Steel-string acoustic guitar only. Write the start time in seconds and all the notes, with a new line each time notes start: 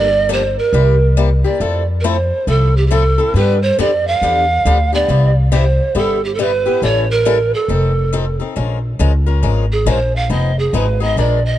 0.29 D3 F3 A#3 D4 G4
0.74 C3 G3 A#3 E4 G4
1.17 C3 G3 A#3 E4 G4
1.44 A#3 E4 G4
1.60 F3 A3 C4 E4 A4
2.04 F3 A3 C4 E4 A4
2.47 F3 A3 C4 E4 A4
2.90 F3 A3 C4 E4 A4
3.18 C4 E4 A4
3.36 D3 F3 B3 D4 G4
3.79 D3 F3 B3 D4 G4
4.22 D3 F3 B3 D4 G4
4.66 D3 F3 B3 D4 G4
4.93 B3 D4 G4
5.09 C3 G3 B3 E4 G4
5.52 C3 G3 B3 E4 G4
5.95 C3 G3 B3 E4 G4
6.39 C3 G3 B3 E4 G4
6.66 B3 E4 G4
6.82 E3 G3 C#4 E4 A4
7.25 E3 G3 C#4 E4 A4
7.69 F3 C4 D#4 A4
8.13 F3 C4 D#4 A4
8.40 C4 D#4 A4
8.56 F3 G#3 C#4 F4 A#4
8.99 F3 G#3 C#4 F4 A#4
9.26 C#4 F4 A#4
9.43 F3 G#3 C#4 F4 A#4
9.86 F3 G#3 C#4 F4 A#4
10.30 F3 B3 D#4 G#4
10.74 F3 B3 D#4 G#4
11.00 B3 D#4 G#4
11.17 F3 G#3 D4 F4 A#4